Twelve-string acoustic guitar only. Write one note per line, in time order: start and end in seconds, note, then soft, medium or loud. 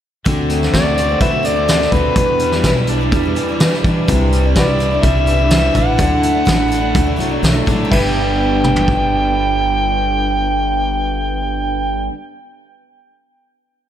0.25 0.62 D3 medium
0.25 0.62 A3 medium
0.25 0.62 C4 loud
0.25 0.60 F#4 medium
0.61 0.73 A3 soft
0.61 0.74 C4 medium
0.61 0.74 F#4 soft
0.74 0.86 D3 medium
0.74 0.86 A3 medium
0.74 0.85 C4 medium
0.74 0.84 F#4 medium
0.85 0.97 A3 soft
0.85 0.98 C4 soft
0.85 0.97 F#4 soft
0.98 1.10 D3 medium
0.98 1.10 A3 medium
0.98 1.09 C4 medium
0.98 1.08 F#4 medium
1.09 1.34 A3 soft
1.09 1.33 C4 soft
1.09 1.31 F#4 soft
1.32 1.43 A3 soft
1.32 1.45 C4 soft
1.32 1.45 F#4 soft
1.43 1.56 D3 medium
1.43 1.57 A3 medium
1.43 1.56 C4 medium
1.47 1.55 F#4 medium
1.56 1.69 A3 soft
1.56 1.69 C4 soft
1.56 1.68 F#4 medium
1.68 1.81 D3 medium
1.68 1.81 A3 medium
1.68 1.81 C4 medium
1.68 1.80 F#4 medium
1.81 1.94 A3 soft
1.81 1.94 C4 soft
1.81 1.93 F#4 soft
1.94 2.17 D3 medium
1.94 2.18 A3 medium
1.94 2.18 C4 medium
1.94 2.19 F#4 medium
2.17 2.53 E2 medium
2.17 2.53 B2 medium
2.17 2.53 E3 medium
2.17 2.53 G3 medium
2.17 2.52 D4 medium
2.17 2.51 E4 medium
2.52 2.64 E3 soft
2.52 2.65 G3 medium
2.52 2.65 D4 medium
2.52 2.64 E4 medium
2.64 2.76 E2 medium
2.64 2.77 B2 medium
2.64 2.77 E3 medium
2.64 2.77 G3 medium
2.64 2.76 D4 loud
2.64 2.75 E4 medium
2.76 2.86 E3 soft
2.76 2.87 G3 medium
2.76 2.88 D4 medium
2.76 2.88 E4 medium
2.87 3.00 E3 medium
2.87 3.00 G3 medium
2.87 3.00 D4 medium
2.87 2.98 E4 medium
2.99 3.25 E3 soft
2.99 3.24 G3 medium
2.99 3.24 D4 medium
2.99 3.22 E4 medium
3.23 3.34 E3 soft
3.23 3.36 G3 medium
3.23 3.36 D4 medium
3.23 3.36 E4 medium
3.35 3.47 E3 medium
3.35 3.48 G3 medium
3.35 3.48 D4 medium
3.35 3.47 E4 medium
3.48 3.60 E3 soft
3.48 3.61 G3 soft
3.48 3.60 D4 medium
3.48 3.60 E4 medium
3.60 3.72 E2 medium
3.60 3.72 B2 medium
3.60 3.72 E3 medium
3.60 3.73 G3 medium
3.60 3.73 D4 loud
3.60 3.71 E4 medium
3.72 3.83 E3 soft
3.72 3.85 G3 soft
3.72 3.85 D4 soft
3.72 3.84 E4 medium
3.84 4.07 E3 medium
3.84 4.07 G3 medium
3.84 4.08 D4 medium
3.84 4.09 E4 medium
4.08 4.43 C3 medium
4.08 4.44 E3 medium
4.08 4.44 G3 loud
4.08 4.44 D4 medium
4.08 4.42 E4 loud
4.43 4.55 G3 soft
4.43 4.56 D4 medium
4.43 4.55 E4 medium
4.55 4.67 C3 medium
4.55 4.68 E3 medium
4.55 4.68 G3 medium
4.55 4.68 D4 medium
4.55 4.66 E4 medium
4.67 4.79 G3 soft
4.67 4.80 D4 soft
4.67 4.79 E4 medium
4.79 4.91 E3 medium
4.79 4.91 G3 medium
4.79 4.91 D4 medium
4.79 4.89 E4 medium
4.91 5.17 G3 soft
4.91 5.16 D4 soft
4.91 5.14 E4 soft
5.15 5.26 G3 soft
5.15 5.28 D4 soft
5.15 5.27 E4 soft
5.26 5.39 E3 medium
5.26 5.39 G3 medium
5.26 5.39 D4 medium
5.26 5.37 E4 medium
5.39 5.50 G3 soft
5.39 5.51 D4 soft
5.39 5.51 E4 soft
5.50 5.75 C3 medium
5.50 5.73 E3 medium
5.50 5.74 G3 medium
5.50 5.76 D4 medium
5.50 5.76 E4 medium
5.74 5.98 E3 medium
5.74 5.99 G3 medium
5.74 5.98 D4 medium
5.74 5.99 E4 medium
5.98 6.34 D3 medium
5.98 6.35 F#3 medium
5.98 6.35 A3 medium
5.98 6.33 D4 medium
5.98 6.31 E4 medium
6.33 6.45 A3 soft
6.33 6.46 D4 soft
6.33 6.46 E4 medium
6.45 6.58 D3 medium
6.45 6.58 F#3 medium
6.45 6.59 A3 medium
6.45 6.57 D4 medium
6.45 6.55 E4 medium
6.56 6.69 A3 soft
6.56 6.69 D4 soft
6.56 6.70 E4 medium
6.68 6.81 F#3 medium
6.68 6.82 A3 medium
6.68 6.80 D4 medium
6.68 6.79 E4 medium
6.80 7.06 A3 soft
6.80 7.05 D4 medium
6.80 7.03 E4 medium
7.04 7.16 A3 soft
7.04 7.17 D4 medium
7.04 7.18 E4 medium
7.16 7.30 F#3 medium
7.16 7.30 A3 medium
7.16 7.30 D4 medium
7.16 7.28 E4 medium
7.29 7.43 A3 soft
7.29 7.43 D4 soft
7.29 7.42 E4 medium
7.43 7.55 D3 medium
7.43 7.55 F#3 medium
7.43 7.55 A3 medium
7.43 7.55 D4 medium
7.43 7.53 E4 medium
7.54 7.66 A3 soft
7.54 7.67 D4 soft
7.54 7.67 E4 soft
7.66 7.84 F#3 medium
7.66 7.91 A3 medium
7.66 7.92 D4 medium
7.66 7.92 E4 medium
7.85 12.04 G3 medium
7.93 12.12 B3 medium
8.00 12.19 D4 medium